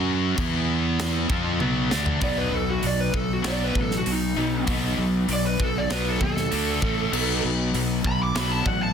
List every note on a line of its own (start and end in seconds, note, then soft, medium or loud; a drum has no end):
0.00 0.34 F#2 medium
0.00 0.37 F#3 medium
0.00 0.37 C#4 medium
0.00 0.38 F#4 loud
0.37 1.26 E2 loud
0.37 1.28 E3 medium
0.37 1.29 B3 medium
0.37 1.30 E4 medium
0.37 kick loud
0.37 crash medium
0.99 snare loud
0.99 crash medium
1.29 1.58 F2 loud
1.29 1.59 F3 medium
1.29 1.60 C4 medium
1.29 1.60 F4 loud
1.29 kick loud
1.60 1.89 B1 medium
1.60 1.90 B2 medium
1.60 1.91 F#3 loud
1.60 1.91 B3 medium
1.60 high tom medium
1.91 2.20 D2 loud
1.91 2.20 D3 medium
1.91 2.21 A3 medium
1.91 2.21 D4 medium
1.91 snare medium
2.06 floor tom medium
2.21 2.48 B1 medium
2.21 2.50 B2 medium
2.21 2.51 F#3 medium
2.21 2.51 B3 medium
2.21 4.35 D#4 loud
2.21 2.38 D5 medium
2.21 kick loud
2.21 open hi-hat medium
2.38 2.55 B4 medium
2.52 2.79 B1 medium
2.52 2.80 B2 medium
2.52 2.80 F#3 medium
2.52 2.69 A4 medium
2.70 2.84 F#4 medium
2.83 3.10 B1 medium
2.83 3.11 B2 medium
2.83 3.11 F#3 medium
2.83 3.00 D5 loud
2.83 open hi-hat medium
3.00 3.15 B4 medium
3.14 3.41 B1 medium
3.14 3.41 B2 medium
3.14 3.42 F#3 medium
3.14 3.33 A4 medium
3.14 kick medium
3.33 3.46 F#4 medium
3.43 3.72 B1 medium
3.43 3.73 B2 medium
3.43 3.73 F#3 medium
3.43 3.73 B3 loud
3.43 snare loud
3.43 open hi-hat soft
3.48 3.61 D5 loud
3.64 3.77 B4 medium
3.75 4.02 A1 medium
3.75 4.03 B2 medium
3.75 4.03 F#3 medium
3.75 kick medium
3.82 3.94 A4 medium
3.91 snare soft
3.97 4.12 F#4 medium
4.06 4.33 B1 medium
4.06 4.34 B2 medium
4.06 4.34 F#3 medium
4.06 open hi-hat medium
4.12 4.69 D#4 medium
4.36 4.64 B1 medium
4.36 4.64 B2 medium
4.36 4.65 F#3 medium
4.36 4.66 B3 medium
4.36 4.66 D#4 medium
4.67 4.95 B1 medium
4.67 4.96 B2 medium
4.67 4.97 F#3 medium
4.67 4.97 B3 loud
4.67 6.51 D#4 loud
4.67 kick loud
4.67 open hi-hat medium
4.98 5.25 B1 medium
4.98 5.26 B2 medium
4.98 5.26 F#3 medium
5.29 5.56 B1 medium
5.29 5.57 B2 medium
5.29 5.57 F#3 medium
5.29 open hi-hat medium
5.33 5.46 D5 loud
5.47 5.60 B4 medium
5.60 5.87 B1 medium
5.60 5.87 B2 medium
5.60 5.88 F#3 medium
5.60 kick medium
5.64 5.77 A4 medium
5.78 5.92 D5 medium
5.90 6.17 B1 medium
5.90 6.19 B2 medium
5.90 6.19 F#3 medium
5.90 6.20 B3 loud
5.90 6.06 B4 medium
5.90 snare loud
5.90 open hi-hat medium
6.10 6.22 A4 medium
6.21 6.48 D#2 loud
6.21 6.48 B2 medium
6.21 6.48 F#3 medium
6.21 7.41 A4 medium
6.21 kick medium
6.37 snare soft
6.51 6.79 D2 medium
6.51 6.80 D3 medium
6.51 6.81 A3 medium
6.51 6.81 D4 medium
6.51 open hi-hat medium
6.81 7.09 A1 medium
6.81 7.11 A2 medium
6.81 7.11 E3 medium
6.81 7.11 A3 medium
6.81 kick medium
7.12 7.40 B1 medium
7.12 7.41 B2 medium
7.12 7.42 F#3 loud
7.12 7.42 B3 loud
7.12 8.93 D#4 loud
7.12 crash loud
7.43 7.71 B1 medium
7.43 7.71 B2 medium
7.43 7.71 F#3 medium
7.74 8.01 B1 medium
7.74 8.02 B2 medium
7.74 8.02 F#3 loud
7.74 open hi-hat medium
8.04 8.32 B1 medium
8.04 8.32 B2 medium
8.04 8.33 F#3 medium
8.04 8.21 B5 loud
8.04 kick medium
8.23 8.38 D6 medium
8.35 8.62 B1 medium
8.35 8.64 B2 medium
8.35 8.65 F#3 loud
8.35 8.65 B3 medium
8.35 8.52 B5 medium
8.35 snare loud
8.35 open hi-hat medium
8.52 8.66 A5 medium
8.66 8.93 A1 loud
8.66 8.93 B2 medium
8.66 8.93 F#3 medium
8.66 8.81 F#5 medium
8.66 kick medium
8.83 8.93 A5 medium